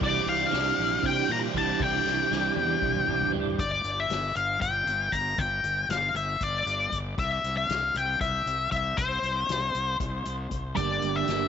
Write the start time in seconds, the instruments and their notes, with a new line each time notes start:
Already playing: tonewheel organ G4
0.00 fingered electric bass C2, clean electric guitar C3 E3 G3 D4 G4, tonewheel organ E3 C5 D5, lead electric guitar D5, kick, ride
0.26 fingered electric bass C2, clean electric guitar G3 D4 G4, lead electric guitar F5, ride
0.50 fingered electric bass C2, clean electric guitar C3 E3 G3 D4 G4, snare, ride
0.78 fingered electric bass A#1, ride
1.03 fingered electric bass C3, lead electric guitar G5, kick, ride
1.28 fingered electric bass A#2, clean electric guitar G3 D4 G4, lead electric guitar A#5, ride
1.53 fingered electric bass C2, clean electric guitar E3 G3 D4 G4, kick, snare, ride
1.58 lead electric guitar A5
1.79 fingered electric bass C2, clean electric guitar C3 E3 G3 D4 G4, lead electric guitar G5, kick, ride
2.05 fingered electric bass C2, clean electric guitar G3 D4 G4, snare
2.31 fingered electric bass C2, clean electric guitar C3 E3 G3 D4 G4, snare
2.56 fingered electric bass E2, high tom
2.82 fingered electric bass C2, kick, mid tom
2.95 mid tom
3.06 fingered electric bass C2, clean electric guitar G3 D4 G4, mid tom
3.21 floor tom
3.32 fingered electric bass G2, clean electric guitar E3 G3 D4 G4, floor tom
3.47 floor tom
3.59 fingered electric bass G1, lead electric guitar D5, kick, closed hi-hat
3.84 fingered electric bass G1, closed hi-hat
4.00 lead electric guitar E5
4.09 fingered electric bass G1, snare, closed hi-hat
4.35 fingered electric bass G1, lead electric guitar F5, closed hi-hat
4.61 fingered electric bass G1, lead electric guitar G5, kick, closed hi-hat
4.86 fingered electric bass G1, closed hi-hat
5.12 fingered electric bass G1, lead electric guitar A#5, kick, closed hi-hat
5.38 fingered electric bass G1, lead electric guitar G5, kick, closed hi-hat
5.64 fingered electric bass G1, closed hi-hat
5.89 fingered electric bass G1, lead electric guitar F5, snare, closed hi-hat
6.14 fingered electric bass G1, lead electric guitar E5, closed hi-hat
6.41 fingered electric bass G1, lead electric guitar D5, kick, closed hi-hat
6.66 fingered electric bass G1, closed hi-hat
6.92 fingered electric bass G1, kick, closed hi-hat
7.18 fingered electric bass C2, lead electric guitar E5, kick, closed hi-hat
7.44 fingered electric bass C2, snare, closed hi-hat
7.57 lead electric guitar F5
7.69 fingered electric bass C2, snare, closed hi-hat
7.94 fingered electric bass C2, lead electric guitar G5, snare, closed hi-hat
8.21 fingered electric bass C2, lead electric guitar E5, kick, snare, closed hi-hat
8.46 fingered electric bass C2, closed hi-hat
8.72 fingered electric bass C2, lead electric guitar E5, kick, closed hi-hat
8.97 fingered electric bass C2, lead electric guitar C5, kick, closed hi-hat
9.22 fingered electric bass C2, snare, closed hi-hat
9.49 fingered electric bass C2, snare, closed hi-hat
9.75 fingered electric bass C2, closed hi-hat
10.00 fingered electric bass C2, kick, closed hi-hat
10.25 fingered electric bass C2, closed hi-hat
10.51 fingered electric bass C2, kick, closed hi-hat
10.75 fingered electric bass G1, clean electric guitar G2 D3 G3 A#3 D4 G4, tonewheel organ G4 A#4 D5 G5, lead electric guitar D5, kick, closed hi-hat
11.02 fingered electric bass G1, closed hi-hat
11.16 lead electric guitar E5
11.27 fingered electric bass G1, clean electric guitar G2 D3 G3 A#3 D4 G4, snare, closed hi-hat